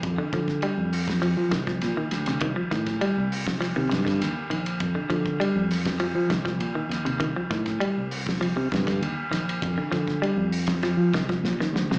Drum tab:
RD |b-b-b--bb-b-b-bb|b-bbb---b-bbb-bb|b-b-b--bb-b-b-bb|b-bbb---b-bbb-bb|
HH |------o---------|------o---------|------o---------|------o---------|
SD |---o---o--ooo-oo|--oo---oo-ooo---|------oo--oo--o-|--oo---o--oo--o-|
BD |o-oo---o--oo----|o-oo---o--oo----|o-oo---o--oo----|o-oo---o--oo----|

RD |b-b-b--bb-b-----|
HH |------o---------|
SD |--oo---oo-oooooo|
BD |o-oo---o--oo----|